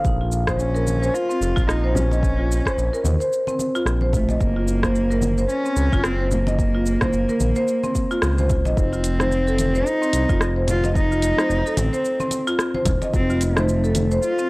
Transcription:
0.05 analog synth bass A#1, kick, shaker
0.21 marimba F4
0.32 shaker
0.47 marimba C5, kick, cross-stick, high conga, shaker
0.59 cello C#4, shaker
0.75 marimba A#4, shaker
0.87 high conga, shaker
1.02 marimba C5, shaker
1.14 cello F4, shaker
1.29 marimba C4, shaker
1.41 analog synth bass F1, shaker
1.56 analog synth bass A#1, marimba F4, kick, shaker
1.67 cello D#4, cross-stick, shaker
1.84 marimba C5
1.94 cello C#4, low conga, shaker
2.11 marimba D#5, muted conga, shaker
2.23 kick, shaker
2.38 marimba F4
2.52 shaker
2.65 marimba C5, kick, cross-stick, shaker
2.77 analog synth bass A#1, shaker
2.93 marimba A#4, shaker
3.04 analog synth bass D#2, high conga, shaker
3.20 marimba C5, muted conga, shaker
3.33 shaker
3.47 marimba C4, muted conga, shaker
3.59 muted conga, shaker
3.75 marimba F4, shaker
3.86 analog synth bass A#1, cross-stick, shaker
4.01 marimba C5, muted conga, high conga
4.13 cello A3, kick, low conga, shaker
4.29 marimba D#5, muted conga, shaker
4.41 analog synth bass F#1, cello A#3, kick, shaker
4.56 marimba F4
4.68 shaker
4.83 marimba C5, kick, cross-stick, high conga, shaker
4.95 shaker
5.11 marimba A#4, shaker
5.22 high conga, shaker
5.38 marimba C5, shaker
5.49 cello C#4, shaker
5.65 marimba C4, shaker
5.76 analog synth bass C#2, shaker
5.92 analog synth bass F#1, marimba F4, kick, shaker
6.04 cello C4, cross-stick, shaker
6.20 marimba C5
6.31 cello A#3, low conga, shaker
6.47 marimba D#5, muted conga, shaker
6.59 kick, shaker
6.75 marimba F4
6.86 shaker
7.01 marimba C5, kick, cross-stick, high conga, low conga, shaker
7.13 analog synth bass F#1, shaker
7.29 marimba A#4, high conga, shaker
7.40 analog synth bass A#1, high conga, shaker
7.56 marimba C5, muted conga, shaker
7.68 shaker
7.83 marimba C4, muted conga, shaker
7.95 kick, muted conga, shaker
8.11 marimba F4, shaker
8.22 analog synth bass C#2, cross-stick, shaker
8.38 marimba C5, muted conga, high conga, shaker
8.49 kick, low conga, shaker
8.65 analog synth bass A#1, marimba D#5, muted conga, shaker
8.76 analog synth bass F1, synth stab F#3 A3 C4 D#4 F4, cello C4, kick, shaker
8.93 marimba F4, shaker
9.04 closed hi-hat, shaker
9.18 synth stab F#3 A3 C4 D#4 F4, marimba C5, cross-stick, high conga, shaker
9.32 shaker
9.47 marimba A4, shaker
9.58 closed hi-hat, high conga, shaker
9.75 marimba C5, shaker
9.87 cello D#4, shaker
10.02 marimba C4, shaker
10.13 analog synth bass C2, closed hi-hat, shaker
10.29 analog synth bass F1, marimba F4, kick, shaker
10.41 cross-stick, shaker
10.56 marimba C5
10.68 cello F4, closed hi-hat, low conga, shaker
10.84 marimba D#5, muted conga, shaker
10.94 synth stab F#3 A3 C4 D#4 F4, cello D#4, kick, shaker
11.12 marimba F4, shaker
11.22 closed hi-hat, shaker
11.36 synth stab F#3 A3 C4 D#4 F4, marimba C5, cross-stick, shaker
11.50 analog synth bass F1, shaker
11.66 marimba A4, shaker
11.77 analog synth bass A1, cello C4, closed hi-hat, high conga, shaker
11.93 marimba C5, muted conga, shaker
12.05 shaker
12.20 marimba C4, muted conga, shaker
12.31 closed hi-hat, muted conga, shaker
12.47 marimba F4, shaker
12.59 cross-stick, shaker
12.74 marimba C5, muted conga, high conga
12.85 analog synth bass D#1, kick, closed hi-hat, low conga, shaker
13.02 marimba D#5, muted conga, shaker
13.12 analog synth bass F1, synth stab F#3 A3 C4 D#4 F4, cello C4, kick, shaker
13.30 marimba F4, shaker
13.41 cello A3, closed hi-hat, shaker
13.54 synth stab F#3 A3 C4 D#4 F4, marimba C5, cross-stick, high conga, shaker
13.69 shaker
13.84 marimba A4, shaker
13.95 closed hi-hat, high conga, shaker
14.11 marimba C5, shaker
14.23 cello F4, shaker
14.38 marimba C4, shaker

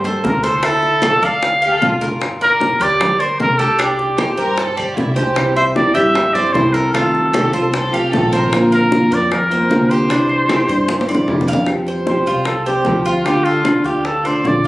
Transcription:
Already playing: upright bass G2
0.04 trumpet A4, cuban tres C5, high conga, low conga
0.24 upright bass D2, trumpet A#4, high bongo, low bongo, high conga
0.43 cuban tres A4, trumpet C5, high bongo, high conga
0.63 cuban tres E4, trumpet A4, high bongo, high conga, claves
0.83 high bongo, high conga
1.02 cuban tres A4, high bongo, high conga, claves
1.22 upright bass D2, cuban tres D5, trumpet F5, high bongo
1.43 high bongo, high conga
1.62 violin section G4, cuban tres F5, high conga, claves
1.73 violin section A4
1.82 upright bass G1, violin section F4, high bongo, low bongo, high conga
2.01 cuban tres A#4, high bongo, high conga
2.21 high bongo, high conga, claves
2.41 trumpet A#4, cuban tres D5, high bongo, high conga
2.60 high bongo, high conga
2.80 upright bass D2, cuban tres G4, trumpet D5, high bongo
3.00 high bongo, high conga, low conga, claves
3.20 cuban tres A#4, trumpet C5, high conga
3.39 upright bass C2, trumpet A#4, high bongo, low bongo, high conga
3.59 cuban tres G4, trumpet A4, high bongo, high conga
3.79 cuban tres D4, trumpet G4, high bongo, high conga, claves
3.99 high bongo, high conga
4.18 cuban tres G4, violin section C5, high bongo, high conga, claves
4.37 upright bass G2, violin section A#4, cuban tres C5, high bongo
4.58 violin section A4, high bongo, high conga
4.77 upright bass D2, violin section G4, cuban tres D5, high conga, claves
4.96 upright bass C2, violin section E4, high bongo, low bongo, high conga
5.14 violin section G4, cuban tres C5, high bongo, high conga
5.36 nylon-string guitar C3 E3 G3 C4 E4, high bongo, high conga, claves
5.56 trumpet C5, cuban tres E5, high bongo, high conga
5.76 nylon-string guitar C3 E3 G3 C4 E4, trumpet D5, high bongo, high conga
5.95 upright bass G2, nylon-string guitar C4 E4, cuban tres G4, trumpet E5, high bongo
5.99 nylon-string guitar G3
6.15 muted nylon-string guitar stroke, high bongo, high conga, low conga, claves
6.34 nylon-string guitar G3 C4 E4, cuban tres C5, trumpet D5, high conga, low conga
6.53 upright bass C2, nylon-string guitar C3 E3 G3 C4 E4, trumpet C5, high bongo, low bongo, high conga
6.73 cuban tres A4, trumpet A#4, high bongo
6.93 nylon-string guitar C3 D#3 A3 C4 F4, cuban tres F4, trumpet A4, high bongo, high conga, claves
7.14 high bongo, high conga
7.33 nylon-string guitar C3 D#3 A3 C4 F4, violin section G4, cuban tres A4, high bongo, high conga, claves
7.52 upright bass C2, nylon-string guitar A3 C4 F4, violin section F4, cuban tres C5, high bongo
7.73 violin section A4, muted nylon-string guitar stroke, high bongo, high conga
7.91 upright bass C2, nylon-string guitar A3 C4 F4, violin section G4, cuban tres F5, high conga, claves
8.12 upright bass A#1, nylon-string guitar C3 D#3 A3 C4 F4, violin section A4, high bongo, low bongo, high conga
8.31 violin section A#4, cuban tres C5, high bongo, high conga
8.52 nylon-string guitar D3 A#3 C4 F4, high bongo, high conga, claves
8.72 trumpet A#4, cuban tres F5, high bongo, high conga
8.91 nylon-string guitar D3 A#3 C4 F4, high bongo, high conga
9.11 upright bass F2, nylon-string guitar A#3 C4 F4, cuban tres A#4, trumpet D5, high bongo
9.30 trumpet A#4, muted nylon-string guitar stroke, high bongo, high conga, low conga, claves
9.50 nylon-string guitar A#3 C4 F4, cuban tres C5, high conga, low conga
9.69 upright bass C2, nylon-string guitar D3 A#3 C4 F4, high bongo, low bongo, high conga
9.90 cuban tres G4, trumpet C5, high bongo
10.09 nylon-string guitar C3 E3 G3 D4 E4, cuban tres D4, high bongo, high conga, claves
10.29 high bongo, high conga
10.49 nylon-string guitar C3 E3 G3 D4 E4, cuban tres G4, high bongo, high conga, claves
10.68 upright bass G2, nylon-string guitar G3 D4 E4, cuban tres C5, high bongo
10.88 muted nylon-string guitar stroke, high bongo, high conga
11.01 high bongo
11.08 nylon-string guitar G3 D4 E4, cuban tres D5, high conga, claves
11.15 low bongo
11.27 upright bass F2, nylon-string guitar C3 E3 G3 D4 E4, high conga
11.41 low bongo
11.47 cuban tres F5, high conga
11.53 low bongo
11.66 nylon-string guitar F3 G3 C4 G4, high bongo, high conga, claves
11.87 cuban tres C5, high bongo, high conga
12.07 nylon-string guitar F3 G3 C4 G4, trumpet C5, high bongo, high conga
12.26 upright bass C2, nylon-string guitar G3 C4 G4, cuban tres F4, high bongo
12.45 trumpet A4, muted nylon-string guitar stroke, high bongo, high conga, claves
12.66 nylon-string guitar G3 C4 G4, trumpet G4, cuban tres C5, high conga
12.85 upright bass D2, nylon-string guitar F3 G3 C4 G4, high bongo, low bongo, high conga
13.05 cuban tres F4, trumpet F4, high bongo
13.25 nylon-string guitar D3 A3 D4 F4, cuban tres F4, trumpet G4, high bongo, high conga, claves
13.44 trumpet F4, cuban tres A4, high bongo, high conga
13.65 nylon-string guitar D3 A3 D4 F4, high bongo, high conga, claves
13.84 upright bass D2, nylon-string guitar A3 D4 F4, trumpet G4, cuban tres F5, high bongo
14.05 trumpet A4, muted nylon-string guitar stroke, high bongo, high conga
14.24 nylon-string guitar A3 D4 F4, trumpet C5, cuban tres D5, high conga, claves
14.44 upright bass A#1, nylon-string guitar D3 A3 D4 F4, trumpet D5, high bongo, low bongo, high conga
14.64 high bongo

